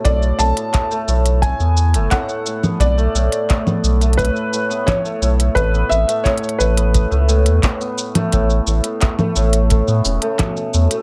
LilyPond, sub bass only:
\new Staff \with { instrumentName = "Sub bass" } { \clef bass \time 4/4 \key b \minor \tempo 4 = 87 b,,8 b,,16 r8. b,,8. e,8 fis,,16 r4 | b,,8 b,,16 r8. b,,8. r4 r16 b,,8 | a,,8 a,,16 r8. a,,8. cis,8 e,16 r4 | a,,8 a,,16 r8. a,,8. a,16 e,,16 r8. e,16 r16 | }